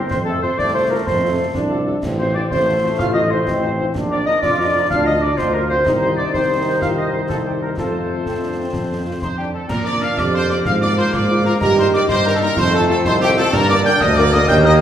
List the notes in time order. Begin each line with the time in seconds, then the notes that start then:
Already playing: C4
0.10 F2 C4 C5 C6, concert bass drum, snare
0.25 F3 A3 C4 F4 A4 A5
0.42 F3 C4 F4 A4 C5 C6
0.58 C2 A3 D4 D5 D6, concert bass drum, snare
0.74 F3 C4 F4 A4 C5 C6
0.89 F3 A#3 C4 F4 A4 A#4 A#5
1.06 F2 C4 C5 C6, concert bass drum, snare
1.22 F3 C4 F4 A4
1.39 F3 C4 F4 A4
1.55 C2 D4, concert bass drum, snare
1.71 F3 C4 F4 A4
1.87 F3 C4 F4 A4
2.03 A1 C4, concert bass drum, snare, crash
2.19 F3 C4 F4 C5 C6
2.34 F3 C4 D4 F4 C5 D5 D6
2.50 A1 A3 C4 C5 C6, concert bass drum, snare
2.66 F3 C4 F4 C5
2.83 F3 C4 F4 C5
2.98 A1 F4 F5 F6, concert bass drum, snare
3.14 F3 D#4 F4 C5 D#5 D#6
3.30 F3 C4 D#4 F4 C5 C6
3.47 A1 C4, concert bass drum, snare
3.62 F3 D#4 F4 C5
3.78 F3 D#4 F4 C5
3.95 A#1 D4, concert bass drum, snare
4.10 F3 D4 F4 A#4 D5 D6
4.26 F3 D4 D#4 F4 A#4 D#5 D#6
4.42 F2 D4 F4 D5 D6, concert bass drum, snare
4.59 F3 D4 F4 A#4
4.75 F3 D4 F4 A#4
4.90 D2 D4 F4 F5 F6, concert bass drum, snare
5.06 F3 D4 D#4 F4 A#4 D#5 D#6
5.22 F3 D4 F4 A#4 D5 D6
5.37 D2 C4 F4 C5 C6, concert bass drum, snare
5.54 F3 A#3 D4 F4 A#4 A#5
5.70 F3 C4 D4 F4 A#4 C5 C6
5.85 C2 D#3 D#4 G4 C5, concert bass drum, snare, crash
6.01 C4 C5 C6
6.17 D4 D5 D6
6.34 C2 D#3 C4 D#4 G4 C5 C6, concert bass drum, snare
6.81 C2 F4 F5 F6, concert bass drum, snare
6.97 D#4 D#5 D#6
7.13 C4 C5 C6
7.29 C2 A3 A4 A5, concert bass drum, snare
7.45 G3 G4 G5
7.62 A#3 A#4 A#5
7.77 F2 F3 A3 C4 F4 A4 C5 A5, concert bass drum, snare
8.26 F2 C4, concert bass drum, snare
8.43 D4
8.60 C4
8.73 F2, concert bass drum, snare
9.07 F4
9.21 F2 D#4 C5 C6, concert bass drum, snare
9.37 D4 G4 G5
9.53 C4 A4 A5
9.69 A#2 F3 D4 A#4 D5 A#5, concert bass drum, snare, crash
9.85 F3 A#3 D4 D5 D6, snare
10.01 F3 A#3 D4 F5 F6, snare
10.18 F2 G4 D5 D6, concert bass drum, snare
10.33 F3 A#3 D4 C5 C6
10.50 F3 A#3 D4 D5 D6, snare
10.64 G#2 A#3 F4 F5 F6, concert bass drum, snare
10.81 F3 A#3 F4 D5 D6
10.97 F3 A#3 F4 C5 C6
11.13 G#2 D5 D6, concert bass drum, snare
11.30 F3 A#3 F4
11.45 F3 A#3 F4 A#4 A#5, snare
11.61 G2 D#3 G4 A#4 D#5 A#5, concert bass drum, snare, crash
11.77 G3 A#3 D#4 C5 C6, snare
11.93 G3 A#3 D#4 D5 D6, snare
12.09 G2 D#4 C5 C6, concert bass drum, snare
12.25 G3 A#3 D#4 A#4 A#5
12.35 A4 A5
12.41 G3 A#3 D#4 A#4 A#5, snare
12.57 F2 C3 A3 F4 A4 C5 C6, concert bass drum, snare
12.73 A3 F4 A4 A5
12.89 A3 F4 A4 A5
13.05 C2 D#4 C5 C6, concert bass drum, snare
13.21 A3 F4 G4 G5
13.37 A3 F4 A4 A5, snare
13.53 G2 D3 A#3 D4 A#4 D5 A#5, concert bass drum, snare, crash
13.69 A#3 D4 A#4 D5 D6, snare
13.85 A#3 D4 A#4 G5 G6, snare
14.00 D2 D#5 D#6, concert bass drum, snare
14.16 A#3 D4 A#4 D5 D6
14.32 A#3 D4 A#4 D#5 D#6, snare
14.48 D#2 D#3 D#4 D#5 G5 G6, concert bass drum, snare
14.64 A#3 D#4 A#4 D#5 D#6